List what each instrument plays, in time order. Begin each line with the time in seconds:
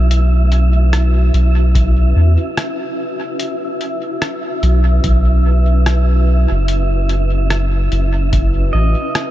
Already playing: sub bass B1, ambient pad A3 C#4 F#4 B4 E5, synth texture E4 E5
0.11 closed hi-hat
0.52 closed hi-hat
0.93 cross-stick, closed hi-hat
1.34 sub bass B1, closed hi-hat
1.75 kick, closed hi-hat
2.16 sub bass E2
2.57 cross-stick, closed hi-hat
3.40 closed hi-hat
3.81 closed hi-hat
4.22 cross-stick, closed hi-hat
4.63 sub bass B1, closed hi-hat
5.04 sub bass B1, kick, closed hi-hat
5.86 cross-stick, closed hi-hat
6.51 sub bass F#1
6.68 closed hi-hat
7.09 closed hi-hat
7.50 ambient pad C#4, cross-stick, closed hi-hat
7.92 sub bass F#1, closed hi-hat
8.14 ambient pad F#4 B4
8.33 kick, closed hi-hat
8.46 ambient pad E4
8.73 sub bass A1, pedal steel guitar D#5
9.15 cross-stick, closed hi-hat